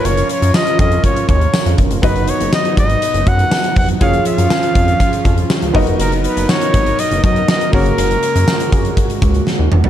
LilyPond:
<<
  \new Staff \with { instrumentName = "Flugelhorn" } { \time 4/4 \key b \lydian \tempo 4 = 121 cis''8 cis''8 dis''8 dis''8 cis''8 cis''4 r8 | b'8 cis''8 dis''8 dis''4 fis''4 fis''8 | eis''8 eis''2. r8 | ais'8 b'8 cis''4 dis''8 dis''8 dis''8 ais'8~ |
ais'2. r4 | }
  \new Staff \with { instrumentName = "Grand piano" } { \time 4/4 \key b \lydian <eis' ais' cis''>2.~ <eis' ais' cis''>8 r8 | <b dis' fis' ais' dis''>1 | <eis' gis' cis''>2.~ <eis' gis' cis''>8 <b dis' fis' ais' dis''>8~ | <b dis' fis' ais' dis''>2.~ <b dis' fis' ais' dis''>8 <ais cis' fis' gis' cis''>8~ |
<ais cis' fis' gis' cis''>2.~ <ais cis' fis' gis' cis''>8 r8 | }
  \new Staff \with { instrumentName = "Analog synth pad" } { \time 4/4 \key b \lydian <cis' eis' ais'>1 | <fis b dis'>1 | <eis cis' eis'>2.~ <eis cis' eis'>8 <b dis' ais'>8~ | <b dis' ais'>2.~ <b dis' ais'>8 <gis fis'>8~ |
<gis fis'>1 | }
  \new Staff \with { instrumentName = "Analog polysynth" } { \time 4/4 \key b \lydian <eis cis' ais'>1 | <fis dis' b'>1 | <eis cis' gis'>2.~ <eis cis' gis'>8 <fis dis' ais'>8~ | <fis dis' ais'>2.~ <fis dis' ais'>8 <cis ais fis'>8~ |
<cis ais fis'>1 | }
  \new Staff \with { instrumentName = "Analog synth bass" } { \clef bass \time 4/4 \key b \lydian fis,,8 r16 fis,16 r8 eis,8 r8 dis,8 r16 eis,16 e,,16 eis,,16 | fis,,8. fis,,16 r8 gis,,8 r16 fis,,16 fis,8 r8 eis,,8 | fis,,8 r16 fis,16 r8 eis,8 r8 eis,8 r16 cis,16 fis,,16 eis,,16 | fis,,8. fis,,16 r8 gis,,8 r16 fis,,16 fis,8 r8 fis,,8 |
fis,,8 r16 fis,16 r8 fis,8 r8 cis,8 r16 dis,16 e,,16 eis,,16 | }
  \new DrumStaff \with { instrumentName = "Drums" } \drummode { \time 4/4 hh16 hh16 hh16 hh16 <sn tamb>16 hh16 <hh bd>16 hh16 <hh bd>16 hh16 <hh bd>16 hh16 <sn tamb>16 hh16 <hh bd>16 hh16 | <hh bd>16 hh16 hh16 hh16 <sn tamb>16 hh16 <hh bd>16 hh16 hh16 hh16 <hh bd>16 hh16 <sn tamb>16 hh16 <hho bd>16 hh16 | <hh bd>16 hh16 hh16 hh16 <sn tamb>16 hh16 <hh bd>16 hh16 <hh bd>16 hh16 <hh bd>16 hh16 <sn tamb>16 hh16 <hho bd>16 hh16 | hh16 hh16 hh16 hh16 <sn tamb>16 hh16 <hh bd>16 hh16 hh16 hh16 <hh bd>16 hh16 <sn tamb>16 hh16 <hho bd>16 hh16 |
hh16 hh16 hh16 hh16 <sn tamb>16 hh16 <hh bd>16 hh16 <hh bd>16 hh16 <hh bd>16 hh16 sn8 toml16 tomfh16 | }
>>